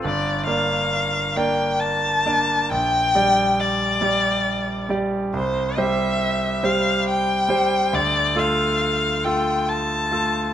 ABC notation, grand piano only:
X:1
M:3/4
L:1/8
Q:1/4=68
K:Gdor
V:1 name="Grand piano"
G,,, [B,Dd]2 [B,Dd]2 [B,Dd] | B,,, [G,Gd]2 [G,Gd]2 [G,Gd] | C,, [G,Gc]2 [G,Gc]2 [G,Gc] | D,, [A,FA]2 [A,FA]2 [A,FA] |]